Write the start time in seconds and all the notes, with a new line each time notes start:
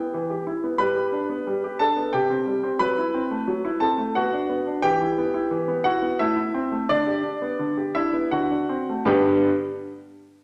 Already playing: B3 G5
0.14 E3
0.30 G4
0.47 E4
0.64 B3
0.78 G3 B4 B5
0.96 G4
1.12 D4
1.29 B3
1.47 G3
1.64 G4
1.79 D4 A4 A5
1.96 B3
2.13 C3 G4 G5
2.30 C4
2.47 G3
2.63 C4
2.79 F#3 B4 B5
2.98 E4
3.14 C4
3.31 A3
3.48 F#3
3.65 E4
3.80 C4 A4 A5
3.98 A3
4.15 B3 F#4 F#5
4.33 D4
4.49 B3
4.67 D4
4.82 E3 G4 G5
5.02 E4
5.18 B3
5.34 E4
5.51 E3
5.68 B3
5.84 E4 F#4 F#5
6.02 B3
6.19 A3 E4 E5
6.37 E4
6.54 C4
6.72 A3
6.89 D3 D4 D5
7.07 G4
7.23 D4
7.42 B3
7.59 D3
7.77 G4
7.95 D4 E4 E5
8.13 B3
8.31 D3 F#4 F#5
8.50 D4
8.69 C4
8.89 A3
9.05 G2 D3 B3 D4 G4 B4 G5